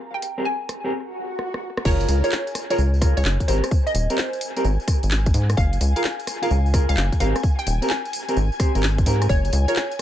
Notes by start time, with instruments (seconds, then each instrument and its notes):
Already playing: ambient pad A#5
0.14 synth pluck G5
0.22 open hi-hat
0.38 clean electric guitar C4 G4 G#4 A#4
0.45 synth pluck G#5
0.69 cross-stick, open hi-hat
0.84 clean electric guitar C4 G4 G#4 A#4
0.92 swell
1.39 cross-stick
1.54 cross-stick
1.77 cross-stick
1.85 analog synth bass F#1, clean electric guitar F4 G#4 A#4, synth pluck C#5, ambient pad G#5, kick, tambourine, crash
2.01 closed hi-hat, tambourine
2.08 analog synth bass C#2, open hi-hat, tambourine
2.24 clean electric guitar F4 G#4 A#4, synth pluck C#5, closed hi-hat, tambourine
2.32 clap, tambourine
2.47 closed hi-hat, tambourine
2.55 cross-stick, open hi-hat, tambourine
2.70 clean electric guitar F4 G#4 A#4, synth pluck C#5, closed hi-hat, tambourine
2.78 analog synth bass C#2, tambourine
2.94 tambourine
3.01 clean electric guitar F4 G#4 A#4, kick, cross-stick, open hi-hat, tambourine
3.17 analog synth bass C#2, synth pluck C#5, closed hi-hat, tambourine
3.25 analog synth bass F#1, clap, tambourine
3.40 kick, closed hi-hat, tambourine
3.48 analog synth bass G#1, clean electric guitar C4 G4 A#4, synth pluck C5, open hi-hat, tambourine
3.64 cross-stick, closed hi-hat, tambourine
3.71 kick, tambourine
3.87 synth pluck D#5, closed hi-hat, tambourine
3.94 analog synth bass D#1, open hi-hat, tambourine
4.10 clean electric guitar C4 G4 A#4, closed hi-hat, tambourine
4.18 synth pluck C5, clap, tambourine
4.33 closed hi-hat, tambourine
4.41 open hi-hat, tambourine
4.57 clean electric guitar C4 G4 A#4, closed hi-hat, tambourine
4.64 analog synth bass G#1, tambourine
4.80 tambourine
4.88 kick, cross-stick, open hi-hat, tambourine
5.03 analog synth bass G#1, closed hi-hat, tambourine
5.11 clap, tambourine
5.26 kick, closed hi-hat, tambourine
5.34 analog synth bass G#2, open hi-hat, tambourine
5.50 cross-stick, closed hi-hat, tambourine
5.57 analog synth bass F#1, synth pluck F5, kick, tambourine
5.73 closed hi-hat, tambourine
5.81 analog synth bass C#2, open hi-hat, tambourine
5.96 clean electric guitar F4 G#4 A#4, synth pluck F5, closed hi-hat, tambourine
6.04 clap, tambourine
6.20 closed hi-hat, tambourine
6.27 cross-stick, open hi-hat, tambourine
6.42 clean electric guitar F4 G#4 A#4, synth pluck F5, closed hi-hat, tambourine
6.50 analog synth bass C#2, tambourine
6.66 tambourine
6.73 clean electric guitar F4 G#4 A#4, kick, cross-stick, open hi-hat, tambourine
6.89 analog synth bass C#2, synth pluck F5, closed hi-hat, tambourine
6.97 analog synth bass F#1, clap, tambourine
7.12 kick, closed hi-hat, tambourine
7.20 analog synth bass G#1, clean electric guitar C4 G4 A#4, synth pluck F5, open hi-hat, tambourine
7.36 cross-stick, closed hi-hat, tambourine
7.43 kick, tambourine
7.59 synth pluck G5, closed hi-hat, tambourine
7.67 analog synth bass D#1, open hi-hat, tambourine
7.82 clean electric guitar C4 G4 A#4, closed hi-hat, tambourine
7.90 synth pluck G#5, clap, tambourine
8.05 closed hi-hat, tambourine
8.13 open hi-hat, tambourine
8.29 clean electric guitar C4 G4 A#4, closed hi-hat, tambourine
8.36 analog synth bass G#1, tambourine
8.52 tambourine
8.60 clean electric guitar C4 G4 C5, kick, cross-stick, open hi-hat, tambourine
8.75 analog synth bass G#1, clean electric guitar C4 G4 A#4, closed hi-hat, tambourine
8.83 clap, tambourine
8.98 kick, closed hi-hat, tambourine
9.06 analog synth bass G#2, clean electric guitar C4 G4 A#4, open hi-hat, tambourine
9.22 cross-stick, closed hi-hat, tambourine
9.29 analog synth bass F#1, synth pluck C#5, kick, tambourine
9.45 closed hi-hat, tambourine
9.53 analog synth bass C#2, open hi-hat, tambourine
9.68 clean electric guitar F4 G#4 A#4, synth pluck C#5, closed hi-hat, tambourine
9.76 clap, tambourine
9.91 closed hi-hat, tambourine